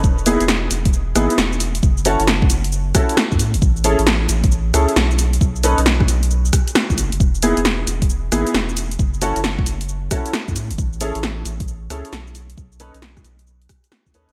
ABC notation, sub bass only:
X:1
M:4/4
L:1/16
Q:"Swing 16ths" 1/4=134
K:E
V:1 name="Sub bass" clef=bass
E,,,3 E,,,3 E,,,4 G,,, z E,,,4 | F,,,3 F,,,3 F,,,4 z3 F,, A,, E,,, | A,,,3 A,,,3 A,,,4 C,, z B,,,4 | B,,,3 B,,,3 B,,,4 z3 B,,, F,,, F,,, |
E,,,3 E,,,3 E,,,4 G,,, z E,,,4 | F,,,3 F,,,3 F,,,4 z3 F,, A,, E,,, | A,,,3 A,,,3 A,,,4 C,, z B,,,4 | B,,,3 B,,,3 B,,,4 z4 D,, F,,, |]